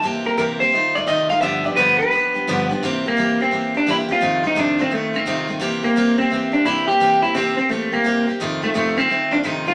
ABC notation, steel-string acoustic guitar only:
X:1
M:4/4
L:1/8
Q:"Swing" 1/4=172
K:F
V:1 name="Steel-string acoustic guitar"
[C,E,B,CG] [B,CG] [C,E,B,CG] [B,CG] [_E,A,_EF] [E,A,EF] [F,,C,E,A,EF] [E,A,EF] | [G,,D,F,=B,DG] [F,B,DG] [G,,D,F,B,DG] [F,B,DG] [F,B,DG] [F,B,DG] [G,,D,F,B,DG] [F,B,DG] | [C,E,B,CG] [B,CG] [C,E,B,CG] [B,CG] [E,B,CG] [B,CG] [C,E,B,CG] [B,CG] | [F,,C,_E,A,CF] [E,A,CF] [F,,C,E,A,CF] [E,A,CF] [E,A,CF] [E,A,CF] [F,,C,E,A,CF] [E,A,CF] |
[C,E,B,CG] [B,CG] [C,E,B,CG] [B,CG] [E,B,CG] [B,CG] [C,E,B,CG] [B,CG] | [C,E,B,CG] [B,CG] [C,E,B,CG] [B,CG] [E,B,CG] [B,CG] [C,E,B,CG] [B,CG] | [F,,C,_E,A,CF] [E,A,CF] [F,,C,E,A,CF] [E,A,CF] [E,A,CF] [E,A,CF] [F,,C,E,A,CF] [E,A,CF] |]